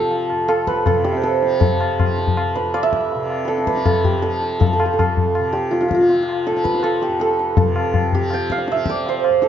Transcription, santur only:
Already playing: F4 G4 A4 G5
0.48 A4
0.68 B4
0.87 A4
1.04 G4
1.08 E5 F5
1.15 C5 D5
1.22 A4 B4
1.60 A4
2.55 B4
2.74 D5
2.83 E5
3.45 A4 B4
3.67 B4
3.85 A4
4.04 G4
4.22 A4
4.60 A4
4.66 A4
4.73 A4
4.79 A4
4.86 A4
4.93 A4
5.00 A4
5.53 G4
5.71 F4
5.81 F4
5.88 F4
5.95 F4
6.02 F4
6.09 F4
6.15 F4
6.23 F4
6.47 A4
6.64 B4
6.79 B4
6.84 A4
7.03 G4
7.21 A4
7.57 A4
8.15 G4
8.34 G5
8.52 F5
8.72 E5
8.90 D5
9.09 C5
9.43 A4

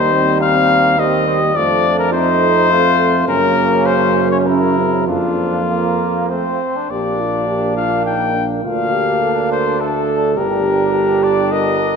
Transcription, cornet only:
Already playing: C5
0.41 F5
0.99 D#5
1.56 D5
1.99 A#4
2.13 C5
3.28 A#4
3.86 C5
4.31 C#5
4.46 A#4
5.07 F4
6.29 C5
6.90 D5
7.77 F5
8.06 G5
8.64 F5
9.52 C5
9.80 A4
10.37 A#4
11.23 D5
11.52 D#5

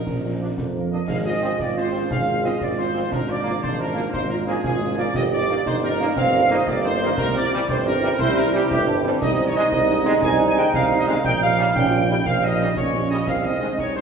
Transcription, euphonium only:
1.08 G#4
1.59 F4
2.11 G#4
2.61 F4
3.13 D4
4.64 F4
5.16 G4
5.66 D#4
6.17 C4
6.68 A#3
7.69 C4
8.21 E4
8.71 E4
8.87 D4
9.05 C4
9.22 D#4
11.75 C#4
11.90 F4
12.09 D#4
12.76 C#4
13.27 C4
13.78 D#4

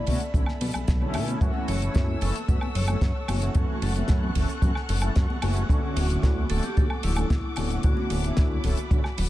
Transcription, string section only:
Already playing: A4 E5 B5
1.41 F#5 C#6 E6
3.56 F#6
5.70 D6
7.84 B5

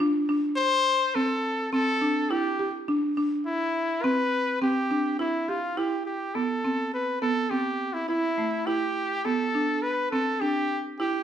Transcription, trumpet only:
0.57 C5
1.15 A4
1.72 A4
2.30 G4
3.46 E4
4.03 B4
4.62 G4
5.19 E4
5.49 F4
5.77 G4
6.06 G4
6.35 A4
6.94 B4
7.22 A4
7.50 G4
7.93 E4
8.08 E4
8.66 G4
9.25 A4
9.82 B4
10.11 A4
10.41 G4
10.99 G4

